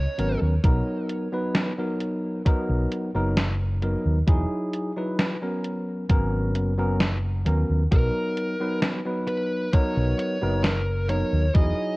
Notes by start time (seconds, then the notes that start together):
Already playing: C#5
0.18 G#1 F#3 B3 C#4 A#4, closed hi-hat
0.42 D#2
0.64 B1 F#3 B3 D#4 A#4, kick, closed hi-hat
1.10 closed hi-hat
1.33 F#3 B3 D#4 B4
1.55 snare, closed hi-hat
1.78 F#3 B3 D#4 A#4
2.01 closed hi-hat
2.46 F#3 B3 D#4 A#4, muted fingered electric bass stroke, kick, closed hi-hat
2.69 B1
2.92 closed hi-hat
3.14 F#1 F#3 B3 D#4 A#4
3.37 snare, closed hi-hat
3.82 F#3 B3 D#4 A#4, closed hi-hat
4.06 D#2
4.27 E1 F#3 D#4 E4 G#4, kick, closed hi-hat
4.73 closed hi-hat
4.96 F#3 D#4 E4 B4
5.19 snare, closed hi-hat
5.41 F#3 B3 C#4 A#4
5.64 closed hi-hat
6.09 G#1 F#3 B3 C#4 A#4, kick, closed hi-hat
6.55 F#1, closed hi-hat
6.78 F#3 B3 C#4 A#4
7.00 snare, closed hi-hat
7.46 D#2 F#3 B3 C#4 A#4, closed hi-hat
7.69 D#2
7.91 B1 F#3 B3 D#4 A#4, kick, closed hi-hat
8.37 closed hi-hat
8.60 F#3 B3 D#4 B4
8.82 snare, closed hi-hat
9.05 F#3 B3 D#4 B4
9.28 B4, closed hi-hat
9.73 F#3 B3 D#4 A#4 C#5, muted fingered electric bass stroke, kick, closed hi-hat
9.97 B1
10.19 C#5, closed hi-hat
10.42 F#1 F#3 B3 D#4 A#4
10.64 A#4, snare, closed hi-hat
11.09 F#3 B3 D#4 A#4 C#5, closed hi-hat
11.33 D#2
11.54 E1 F#3 D#4 E4 G#4 D#5, kick, closed hi-hat